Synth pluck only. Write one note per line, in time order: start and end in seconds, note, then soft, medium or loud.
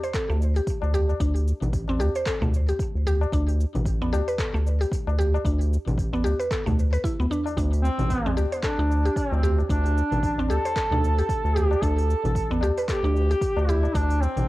0.03 0.14 C5 medium
0.14 0.29 A4 loud
0.30 0.40 A3 medium
0.56 0.93 G4 medium
0.94 1.19 G4 loud
1.21 1.35 D4 medium
1.89 1.99 C4 medium
2.00 2.14 G4 loud
2.16 2.26 C5 medium
2.27 2.41 A4 loud
2.42 2.53 A3 medium
2.69 3.05 G4 medium
3.07 3.32 G4 loud
3.33 3.47 D4 medium
4.02 4.12 B3 medium
4.13 4.26 G4 loud
4.28 4.38 B4 medium
4.39 4.53 A4 loud
4.54 4.65 A3 medium
4.81 5.17 G4 medium
5.18 5.44 G4 loud
5.45 5.60 D4 medium
6.13 6.24 B3 medium
6.24 6.38 G4 loud
6.39 6.50 B4 medium
6.51 6.65 A4 medium
6.66 6.77 A3 medium
6.93 7.04 B4 loud
7.04 7.18 E4 medium
7.20 7.26 B3 medium
7.31 7.45 D4 medium
7.57 7.72 D4 medium
8.26 8.36 C4 medium
8.37 8.51 G4 loud
8.52 8.63 C5 medium
8.64 8.78 A4 loud
8.79 8.90 D4 medium
9.06 9.42 G4 medium
9.43 9.69 G4 loud
9.70 9.85 D4 medium
10.39 10.49 C4 medium
10.50 10.63 G4 loud
10.65 10.76 C5 medium
10.77 10.91 A4 loud
10.92 11.03 D4 medium
11.19 11.55 G4 medium
11.56 11.81 G4 loud
11.82 11.97 D4 medium
12.51 12.61 B3 medium
12.63 12.76 G4 loud
12.78 12.88 B4 medium
12.89 13.03 A4 loud
13.04 13.15 D4 medium
13.31 13.67 G4 medium
13.69 13.94 G4 loud
13.95 14.09 D4 medium